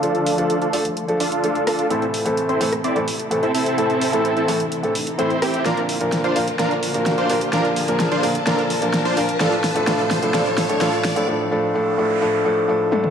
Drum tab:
HH |xxoxxxoxxxoxxxox|xxoxxxoxxxoxxxox|xxoxxxoxxxoxxxox|xxoxxxoxxxoxxxox|
SD |--------------r-|-------r--------|--------------r-|o---o---o---o---|
T1 |----------------|----------------|----------------|----------------|
T2 |----------------|----------------|----------------|----------------|

HH |xxoxxxoxxxoxxxox|xxoxxxoxxxoxxxox|----------------|
SD |o---o---o---o---|o-o-o-o-o-o-o-o-|----------------|
T1 |----------------|----------------|--------------o-|
T2 |----------------|----------------|---------------o|